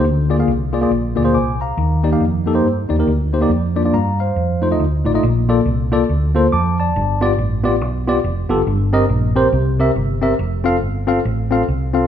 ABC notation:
X:1
M:4/4
L:1/16
Q:"Swing" 1/4=139
K:Bb
V:1 name="Tine electric piano"
z2 [B,F_Ad] [B,FAf] z2 [B,FAd] [B,FAd] z2 [B,FAd] [B,FAc] [_ad']2 [fb]2- | [fb]2 [B,EGd] [B,EGf] z2 [B,EGA] [B,EGc] z2 [B,EGd] [B,EGB] z2 [B,EGc] [B,EGd] | z2 [B,DFd] [B,DFd] [fb]2 [cf]4 [A,EFc] [A,EFe] z2 [A,EFd] [A,EFe] | z2 [B,FAd] z3 [B,FAd] z3 [B,FAc] z [ad']2 [da]2- |
[da]2 [=B,FGd] z3 [B,FGd] z3 [B,FGd] z3 [B,FGA] z | z2 [CGBe] z3 [CGBc] z3 [CGB=e] z3 [CGBe] z | z2 [CFAf] z3 [CFAf] z3 [CFAf] z3 [CFAf] z |]
V:2 name="Tine electric piano" clef=bass
D,6 z2 B,,6 z2 | E,6 z8 z2 | z16 | B,,6 z8 z2 |
G,,6 z8 z2 | G,,6 z2 C,6 z2 | z16 |]
V:3 name="Fingered electric bass" clef=bass
D,,4 C,,4 B,,,2 D,,2 C,,4 | E,,4 F,,4 G,,2 E,,2 D,,4 | F,,4 G,,4 F,,4 D,,2 A,,,2 | B,,,4 C,,4 D,,4 F,,4 |
G,,,4 A,,,4 =B,,,4 F,,,2 _G,,,2 | G,,,4 B,,,4 C,,4 G,,,4 | F,,,4 G,,,4 A,,,4 C,,4 |]